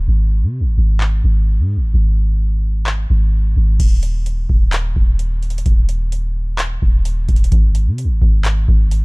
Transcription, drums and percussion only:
1.01 clap
2.87 clap
3.80 kick, closed hi-hat, crash
4.03 closed hi-hat
4.26 closed hi-hat
4.50 kick
4.73 clap, closed hi-hat
4.96 kick
5.19 closed hi-hat
5.43 closed hi-hat
5.50 closed hi-hat
5.58 closed hi-hat
5.66 kick, closed hi-hat
5.89 closed hi-hat
6.12 closed hi-hat
6.59 clap, closed hi-hat
6.82 kick
7.05 closed hi-hat
7.29 kick, closed hi-hat
7.36 closed hi-hat
7.44 closed hi-hat
7.52 kick, closed hi-hat
7.75 closed hi-hat
7.98 closed hi-hat
8.22 kick
8.45 clap, closed hi-hat
8.68 kick
8.91 closed hi-hat

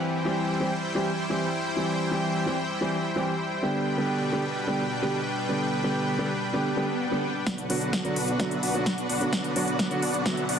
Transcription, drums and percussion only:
7.47 kick, snare, closed hi-hat
7.58 closed hi-hat
7.70 open hi-hat
7.82 closed hi-hat
7.93 kick, snare, closed hi-hat
8.05 closed hi-hat
8.16 open hi-hat
8.28 closed hi-hat
8.40 kick, snare, closed hi-hat
8.51 closed hi-hat
8.63 open hi-hat
8.75 closed hi-hat
8.86 kick, snare, closed hi-hat
8.98 closed hi-hat
9.10 open hi-hat
9.21 closed hi-hat
9.33 kick, snare, closed hi-hat
9.44 closed hi-hat
9.56 open hi-hat
9.68 closed hi-hat
9.79 kick, snare, closed hi-hat
9.91 closed hi-hat
10.03 open hi-hat
10.14 closed hi-hat
10.26 kick, snare, closed hi-hat
10.37 closed hi-hat
10.49 open hi-hat

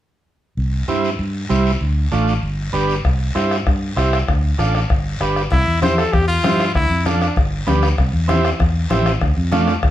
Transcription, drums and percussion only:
0.57 long guiro
0.88 short guiro
1.04 short guiro
1.19 long guiro
1.50 short guiro
1.66 short guiro
1.81 long guiro
2.12 short guiro
2.28 short guiro
2.43 long guiro
2.74 short guiro
2.89 short guiro
3.05 bombo low, bombo rim, long guiro
3.36 bombo rim, short guiro
3.51 bombo rim, short guiro
3.67 bombo low, bombo rim, long guiro
3.97 bombo rim, short guiro
4.13 bombo rim, short guiro
4.28 bombo low, bombo rim, long guiro
4.59 bombo rim, short guiro
4.75 bombo rim, short guiro
4.90 bombo low, bombo rim, long guiro
5.21 bombo rim, short guiro
5.36 bombo rim, short guiro
5.52 bombo low, bombo rim, high conga, long guiro
5.83 bombo rim, high conga, short guiro
5.98 bombo rim, short guiro
6.13 bombo low, bombo rim, high conga, long guiro
6.44 bombo rim, high conga, short guiro
6.59 bombo rim, short guiro
6.75 bombo low, bombo rim, high conga
7.06 bombo rim, high conga, short guiro
7.21 bombo rim, short guiro
7.36 bombo low, bombo rim, high conga, long guiro
7.67 bombo rim, high conga, short guiro
7.83 bombo rim, short guiro
7.98 bombo low, bombo rim, high conga, long guiro
8.29 bombo rim, high conga, short guiro
8.44 bombo rim, short guiro
8.60 bombo low, bombo rim, high conga, long guiro
8.90 bombo rim, high conga, short guiro
9.06 bombo rim, short guiro
9.21 bombo low, bombo rim, high conga, long guiro
9.52 bombo rim, high conga, short guiro
9.68 bombo rim, short guiro
9.83 bombo low, bombo rim, high conga, long guiro

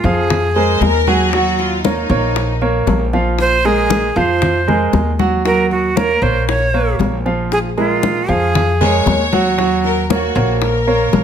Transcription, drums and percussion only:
0.05 high bongo, high conga
0.30 high bongo, high conga, low conga
0.56 high conga
0.82 high bongo, low bongo, high conga
1.07 high bongo, high conga
1.33 high bongo, high conga
1.59 high bongo, high conga
1.85 high bongo, high conga
2.11 high bongo
2.36 high bongo, high conga
2.62 high conga
2.87 high bongo, low bongo, high conga
3.13 high bongo, high conga
3.39 high bongo, high conga
3.65 high bongo, high conga
3.90 high bongo, high conga
4.16 high bongo, high conga
4.42 high bongo, high conga, low conga
4.68 high conga, low conga
4.93 high bongo, low bongo, high conga
5.19 high bongo, high conga
5.46 high bongo, high conga
5.71 high bongo, high conga
5.97 high bongo, high conga
6.23 high bongo
6.49 high bongo, high conga
6.74 high conga
7.00 high bongo, low bongo, high conga
7.26 high bongo, high conga
7.52 high bongo, high conga
7.77 high bongo, high conga
8.03 high bongo, high conga
8.29 high bongo, high conga
8.55 high bongo, high conga, low conga
8.81 high conga, low conga
9.07 high bongo, low bongo, high conga
9.33 high bongo, high conga
9.59 high bongo, high conga
9.84 high bongo, high conga
10.10 high bongo, high conga
10.36 high bongo
10.62 high bongo, high conga
10.88 high conga
11.13 high bongo, low bongo, high conga

